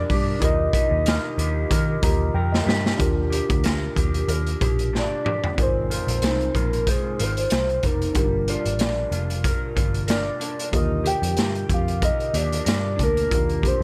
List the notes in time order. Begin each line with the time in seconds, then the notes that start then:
Already playing: D#3 D4 F4 G4 A#4 D5
0.10 G2 G4, kick, open hi-hat
0.39 D#2 D#3 D#4 F4 G4, kick, closed hi-hat
0.44 A#4 D#5
0.73 G4, kick, closed hi-hat
0.91 D#2
1.06 A#4, snare, closed hi-hat
1.38 D#2 G4, closed hi-hat
1.70 D#3 A#4, kick, closed hi-hat
2.02 D#2 D3 F4 G4 A#4 A#5, kick, closed hi-hat
2.34 F2 A#4 G5
2.52 D#5, snare
2.66 G2 G4, snare
2.86 snare
2.97 D#2 D4 F4 G4, kick, closed hi-hat
3.02 A#4
3.30 G4, closed hi-hat
3.49 D2, kick, closed hi-hat
3.64 A#4, snare, closed hi-hat
3.96 D#2 G4, kick, closed hi-hat
4.14 closed hi-hat
4.28 D#2 A#4, closed hi-hat
4.47 closed hi-hat
4.61 A#1 G4, kick, closed hi-hat
4.79 closed hi-hat
4.93 D4, snare
4.98 D5
5.25 G4, mid tom
5.44 floor tom
5.55 G#1 G#3 C4 D#4 F4, kick, closed hi-hat
5.60 A#4 C5
5.90 F4 C5, closed hi-hat
6.07 A#1, closed hi-hat
6.22 C2 D#4, snare, closed hi-hat
6.41 closed hi-hat
6.54 A#1 F4 A#4, kick, closed hi-hat
6.73 closed hi-hat
6.87 G#4 C5, kick, closed hi-hat
7.19 G#1 F4 C5, closed hi-hat
7.37 closed hi-hat
7.50 C2 C5, snare, closed hi-hat
7.70 closed hi-hat
7.83 F1 D#4 A#4, kick, closed hi-hat
8.02 closed hi-hat
8.13 G1 G3 D4 F4 G4, kick, closed hi-hat
8.18 A#4
8.48 F4 D5, closed hi-hat
8.66 G#1, closed hi-hat
8.78 A#1 D4, snare, closed hi-hat
9.11 F1 F4, closed hi-hat
9.30 closed hi-hat
9.44 A#4, kick, closed hi-hat
9.76 G1 F4, kick, closed hi-hat
9.94 closed hi-hat
10.08 A#4 D5, snare, closed hi-hat
10.40 D4, closed hi-hat
10.59 closed hi-hat
10.71 D#2 D3 F4 G4 D#5, kick, closed hi-hat
10.76 A#4
11.04 G4 G5, closed hi-hat
11.22 F2, closed hi-hat
11.37 G2, snare, closed hi-hat
11.55 closed hi-hat
11.69 F2 G4, kick, closed hi-hat
11.74 F5
11.88 closed hi-hat
12.02 A#4 D#5, kick, closed hi-hat
12.20 closed hi-hat
12.34 D#2 G4 D5, closed hi-hat
12.52 closed hi-hat
12.65 G2 A#4, snare, closed hi-hat
12.96 D2 D4, kick, closed hi-hat
13.03 A#4
13.17 closed hi-hat
13.29 D#2 D4 F4 G4, kick, closed hi-hat
13.34 A#4
13.49 closed hi-hat
13.63 G4, kick, closed hi-hat
13.67 C5